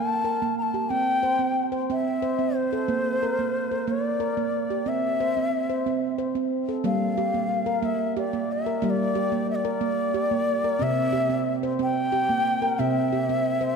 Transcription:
Already playing: handpan A#3, bansuri A5
0.25 handpan A#4
0.42 handpan A#3
0.58 bansuri A5 A#5
0.74 handpan G4
0.90 handpan C4, bansuri G5
1.23 handpan C5
1.39 handpan C4
1.72 handpan C5
1.90 handpan C4, bansuri E5
2.22 handpan C5
2.39 handpan C4
2.56 bansuri C5
2.73 handpan A4
2.88 handpan A#3
3.23 handpan A#4
3.39 handpan A#3
3.71 handpan A#4
3.87 handpan A#3, bansuri C#5
4.02 bansuri D5
4.20 handpan A#4
4.37 handpan A#3
4.70 handpan G4
4.86 handpan C4, bansuri E5
5.20 handpan C5
5.37 handpan C4
5.70 handpan C5
5.86 handpan C4
6.18 handpan C5
6.35 handpan C4
6.69 handpan A4
6.84 handpan G3 A#3, bansuri F5
7.18 handpan G4
7.34 handpan A#3
7.66 handpan A#4
7.83 handpan A#3, bansuri E5
8.17 handpan G4, bansuri D5
8.33 handpan A#3
8.52 bansuri E5
8.66 handpan A#4
8.82 handpan G3 A#3, bansuri E5
8.90 bansuri D5
9.15 handpan G4
9.32 handpan A#3
9.50 bansuri E5
9.55 bansuri D5
9.65 handpan A#4
9.81 handpan A#3
10.14 handpan G4
10.31 handpan A#3
10.64 handpan A#4
10.79 handpan C3 C4, bansuri E5
11.13 handpan G4
11.30 handpan C4
11.63 handpan C5
11.79 handpan C4, bansuri G5
12.12 handpan G4
12.29 handpan A#3
12.62 handpan A#4
12.79 handpan C3 C4, bansuri E5
13.13 handpan G4
13.29 handpan C4
13.61 handpan C5

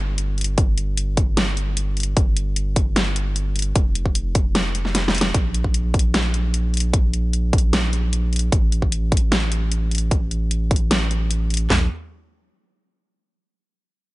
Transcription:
Already playing: sub bass G1
0.18 closed hi-hat
0.38 closed hi-hat
0.41 closed hi-hat
0.44 closed hi-hat
0.58 kick, closed hi-hat
0.78 closed hi-hat
0.97 closed hi-hat
1.17 kick, closed hi-hat
1.37 snare, closed hi-hat
1.57 closed hi-hat
1.77 closed hi-hat
1.97 closed hi-hat
2.00 closed hi-hat
2.03 closed hi-hat
2.17 sub bass G1, kick, closed hi-hat
2.37 closed hi-hat
2.56 closed hi-hat
2.76 kick, closed hi-hat
2.96 snare, closed hi-hat
3.16 closed hi-hat
3.36 closed hi-hat
3.56 closed hi-hat
3.59 closed hi-hat
3.62 closed hi-hat
3.76 sub bass F1, kick, closed hi-hat
3.95 closed hi-hat
4.06 kick
4.15 closed hi-hat
4.35 kick, closed hi-hat
4.55 snare, closed hi-hat
4.75 closed hi-hat
4.85 snare
4.95 snare, closed hi-hat
5.08 snare
5.15 closed hi-hat, open hi-hat
5.21 snare, closed hi-hat
5.34 sub bass A#1, kick, closed hi-hat
5.54 closed hi-hat
5.64 kick
5.74 closed hi-hat
5.94 kick, closed hi-hat
5.99 closed hi-hat
6.14 snare, closed hi-hat
6.34 closed hi-hat
6.54 closed hi-hat
6.74 closed hi-hat
6.77 closed hi-hat
6.80 closed hi-hat
6.94 kick, closed hi-hat
7.14 closed hi-hat
7.33 closed hi-hat
7.53 kick, closed hi-hat
7.58 closed hi-hat
7.73 snare, closed hi-hat
7.93 closed hi-hat
8.13 closed hi-hat
8.33 closed hi-hat
8.36 closed hi-hat
8.39 closed hi-hat
8.52 sub bass A1, kick, closed hi-hat
8.72 closed hi-hat
8.82 kick
8.92 closed hi-hat
9.12 kick, closed hi-hat
9.17 closed hi-hat
9.32 snare, closed hi-hat
9.52 closed hi-hat
9.72 closed hi-hat
9.91 closed hi-hat
9.95 closed hi-hat
9.98 closed hi-hat
10.11 kick, closed hi-hat
10.31 closed hi-hat
10.51 closed hi-hat
10.71 kick, closed hi-hat
10.76 closed hi-hat
10.91 snare, closed hi-hat
11.11 closed hi-hat
11.31 closed hi-hat
11.50 closed hi-hat
11.54 closed hi-hat
11.57 closed hi-hat
11.70 sub bass A#1, snare, clap, floor tom

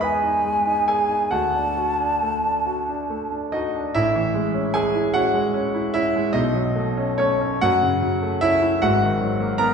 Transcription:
Already playing: grand piano E2 G#3 D#4 C#5 D#5 C#6 D#6
0.00 grand piano G#4 B4 B5
0.04 flute G#5
0.23 grand piano D#4
0.45 grand piano G#3
0.67 grand piano D#4
0.88 grand piano G#4 G#5
1.09 grand piano D#4
1.31 grand piano D2 F#4 F#5, flute A5
1.55 grand piano D4
1.77 grand piano F#4
2.00 grand piano D4
2.23 grand piano A3
2.44 grand piano D4
2.66 grand piano F#4
2.89 grand piano D4
3.10 grand piano A3
3.32 grand piano D4
3.52 grand piano D#4 F#4 D#5
3.75 grand piano D4
3.95 grand piano A1 A2 E4 E5
4.15 grand piano E3
4.34 grand piano G#3
4.54 grand piano C#4
4.74 grand piano G#3 G#4 G#5
4.95 grand piano E4
5.14 grand piano C#4 F#4 F#5
5.34 grand piano G#3
5.54 grand piano C#4
5.75 grand piano E4
5.94 grand piano C#4 E4 E5
6.16 grand piano G#3
6.33 grand piano B1 B2 D#4 D#5
6.54 grand piano F#3
6.75 grand piano A3
6.97 grand piano C#4
7.18 grand piano A3 C#4 C#5
7.41 grand piano C#4
7.61 grand piano F#2 F#4 F#5
7.82 grand piano C#3
8.02 grand piano F#3
8.22 grand piano A3
8.41 grand piano C#4 E4 E5
8.62 grand piano E4
8.82 grand piano G#1 G#2 F#4 F#5
9.03 grand piano D#3
9.21 grand piano F#3
9.40 grand piano A#3
9.58 grand piano B3 A#4 A#5

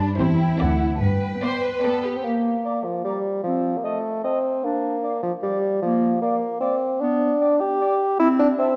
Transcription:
Already playing: double bass section G2, cello section D4
0.19 double bass section E2, viola section C4, cello section E4, violin section G4 C5, flute section B5
0.39 flute section G5
0.59 double bass section D2, viola section C4, violin section A4 D5, flute section F#5
0.79 flute section F#5
0.94 flute section A5
1.01 double bass section G2, cello section B4, flute section G5
1.42 viola section B3, violin section C5 D5
1.63 violin section B4
1.83 viola section B3, bassoon B3, violin section A4 D5
2.03 violin section G4
2.17 bassoon C4
2.24 bassoon A#3, clarinet A#3
2.65 cor anglais D5, flute section A#5
2.85 bassoon F3
3.04 bassoon G3, cor anglais D5, flute section A#5
3.44 bassoon F3, clarinet C4
3.78 bassoon A#3
3.83 bassoon A3, cor anglais D#5, flute section A5
4.24 bassoon C4, cor anglais D#5, flute section A5
4.64 bassoon A#3, clarinet D4
5.03 cor anglais D5, flute section F5
5.23 bassoon F3
5.43 bassoon G3, cor anglais D5, flute section F5
5.82 bassoon F3, clarinet A#3
6.22 bassoon A#3, cor anglais D5, flute section F5
6.61 bassoon C4, cor anglais D5, flute section F5
7.00 clarinet B3, bassoon D4
7.40 cor anglais D5, flute section G5
7.60 bassoon G4
7.80 cor anglais D5, flute section G5
8.20 clarinet C4, bassoon E4
8.39 bassoon D4
8.59 bassoon C4, cor anglais E5, flute section A5

